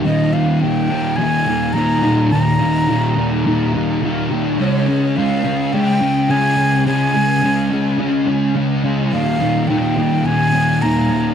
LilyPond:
<<
  \new Staff \with { instrumentName = "Flute" } { \time 4/4 \key ees \mixolydian \tempo 4 = 106 ees''8 f''8 g''4 aes''4 bes''4 | bes''2 r2 | des''4 f''4 g''4 aes''4 | aes''2 r2 |
f''4 g''4 aes''4 bes''4 | }
  \new Staff \with { instrumentName = "Distorted electric guitar" } { \clef bass \time 4/4 \key ees \mixolydian <ees, bes, ees>8 <bes, ees>8 <ees, bes, ees>8 <bes, ees>8 <ees, bes, ees>8 <bes, ees>8 <ees, bes, ees>8 <bes, ees>8 | <ees, bes, ees>8 <bes, ees>8 <ees, bes, ees>8 <bes, ees>8 <ees, bes, ees>8 <bes, ees>8 <ees, bes, ees>8 <bes, ees>8 | <des aes des'>8 <aes des'>8 <des aes des'>8 <aes des'>8 <des aes des'>8 <aes des'>8 <des aes des'>8 <aes des'>8 | <des aes des'>8 <aes des'>8 <des aes des'>8 <aes des'>8 <des aes des'>8 <aes des'>8 <des aes des'>8 <aes des'>8 |
<ees, bes, ees>8 <bes, ees>8 <ees, bes, ees>8 <bes, ees>8 <ees, bes, ees>8 <bes, ees>8 <ees, bes, ees>8 <bes, ees>8 | }
>>